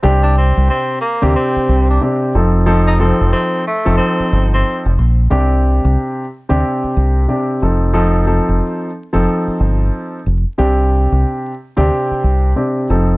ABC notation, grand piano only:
X:1
M:4/4
L:1/16
Q:"Swing 16ths" 1/4=91
K:Cdor
V:1 name="Grand piano"
[C,CDG]6 z [C,CDG]4- [C,CDG] [C,CDG]2 [F,CEA]2 | [F,CEA]2 [F,CEA]4 z [F,CEA]6 z3 | [C,CDG]6 z [C,CDG]4- [C,CDG] [C,CDG]2 [F,CEA]2 | [F,CEA]2 [F,CEA]4 z [F,CEA]6 z3 |
[C,CDG]6 z [C,CDG]4- [C,CDG] [C,CDG]2 [F,CEA]2 |]